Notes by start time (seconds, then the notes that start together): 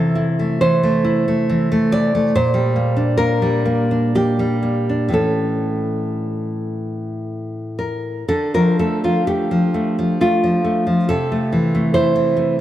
Already playing: C3 E3 A4
0.15 E4
0.39 A3
0.61 E3 C5
0.83 A3
1.04 E4
1.28 A3
1.50 E3
1.72 A3
1.92 E4 D5
2.15 A3
2.35 A#2 C5
2.54 G3
2.76 A#3
2.96 D4
3.17 A#3 A#4
3.42 G3
3.65 A#3
3.91 D4
4.15 A#3 G4
4.39 G3
4.63 A#3
4.89 D4
5.09 A2 E3 C#4
5.14 A4
7.79 A#4
8.28 D3 A4
8.54 F3 A#4
8.79 A3 A4
9.04 F3 F4
9.27 A3 G4
9.51 F3
9.74 A3
9.99 F3
10.21 A3 F4
10.44 F3
10.64 A3
10.87 F3
11.09 C3 A4
11.32 A3
11.53 E3
11.75 A3
11.94 E4 C5
12.16 E3
12.37 A3